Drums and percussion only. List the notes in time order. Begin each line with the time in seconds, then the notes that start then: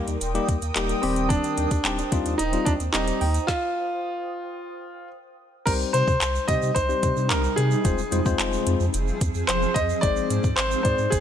0.08 closed hi-hat, shaker
0.21 closed hi-hat, shaker
0.35 closed hi-hat, shaker
0.49 kick, closed hi-hat, shaker
0.62 closed hi-hat, shaker
0.76 clap, closed hi-hat, shaker
0.89 closed hi-hat, shaker
1.03 open hi-hat
1.16 closed hi-hat, shaker
1.30 kick, closed hi-hat, shaker
1.44 closed hi-hat, shaker
1.57 closed hi-hat, shaker
1.71 kick, closed hi-hat, shaker
1.85 clap, closed hi-hat, shaker
1.98 closed hi-hat, shaker
2.12 kick, closed hi-hat, shaker
2.26 closed hi-hat, shaker
2.39 closed hi-hat, shaker
2.53 closed hi-hat, shaker
2.66 kick, closed hi-hat, shaker
2.80 closed hi-hat, shaker
2.94 clap, closed hi-hat, shaker
3.08 closed hi-hat, shaker
3.21 open hi-hat
3.34 closed hi-hat, shaker
3.48 kick, snare
5.67 kick, closed hi-hat, crash, shaker
5.80 shaker
5.94 closed hi-hat, shaker
6.08 kick, shaker
6.21 clap, closed hi-hat, shaker
6.35 shaker
6.48 kick, closed hi-hat, shaker
6.62 shaker
6.76 kick, closed hi-hat, shaker
6.90 shaker
7.03 kick, closed hi-hat, shaker
7.17 shaker
7.30 clap, closed hi-hat, shaker
7.44 shaker
7.57 closed hi-hat, shaker
7.71 shaker
7.85 kick, closed hi-hat, shaker
7.98 shaker
8.12 closed hi-hat, shaker
8.25 kick, shaker
8.39 clap, closed hi-hat, shaker
8.53 shaker
8.67 closed hi-hat, shaker
8.80 shaker
8.94 closed hi-hat, shaker
9.07 shaker
9.21 kick, closed hi-hat, shaker
9.35 shaker
9.48 clap, closed hi-hat, shaker
9.62 shaker
9.76 kick, closed hi-hat, shaker
9.89 shaker
10.03 kick, closed hi-hat, shaker
10.16 shaker
10.30 closed hi-hat, shaker
10.44 kick, shaker
10.57 clap, closed hi-hat, shaker
10.71 shaker
10.85 kick, closed hi-hat, shaker
10.98 shaker
11.12 kick, closed hi-hat, shaker